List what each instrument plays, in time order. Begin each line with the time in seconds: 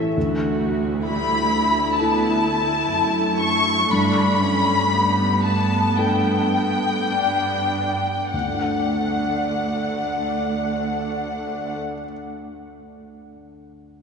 Already playing: grand piano A2 E4 G4 A4, harp A2 E3 E4 A4
0.16 cello section D2, grand piano D2, viola section A3 F#4
1.06 viola section G3 E4, grand piano A3, violin section B5
1.54 viola section A3
2.00 viola section B3 E4, grand piano E4 A4, violin section A5
2.48 viola section A3
2.95 cello section F#2
3.41 violin section C#6
3.91 cello section G2, grand piano G2, viola section D4, violin section B5
4.42 viola section C#4
4.92 viola section G3 B3, grand piano A3
5.44 viola section A3, violin section A5
5.98 grand piano D4 A4, violin section G5
7.11 viola section B3 D4
8.32 cello section D2, grand piano D2, viola section A3 D4, violin section F#5
8.40 grand piano D3
8.47 grand piano A3
8.54 grand piano D4
8.61 grand piano A4
8.69 grand piano D5